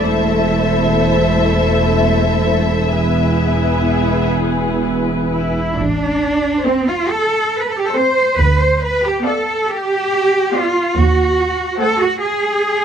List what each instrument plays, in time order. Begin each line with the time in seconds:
0.01 double bass section E1, cello section E2, viola section A3 E4, violin section A4 C5 E5
2.92 viola section B3 E4, violin section G#4 B4
5.32 cello section E4
5.77 double bass section A1, cello section D4
6.65 viola section C4, cello section C4, violin section C5
6.88 cello section F4
7.10 cello section A4
7.60 cello section B4
7.69 cello section A4
7.78 cello section G4
7.87 cello section A4
7.94 viola section C4, violin section C5, cello section C5
8.38 double bass section D2, cello section B4
8.60 cello section C5
8.81 cello section B4
9.04 cello section G4
9.25 viola section B3, cello section A4, violin section D5 F5
9.70 cello section G4
10.54 viola section B3, cello section F4, violin section D5 F5
10.97 double bass section D#2, cello section F#4
11.80 viola section A3, cello section A4, violin section C5 F#5
12.01 cello section F#4
12.21 cello section G#4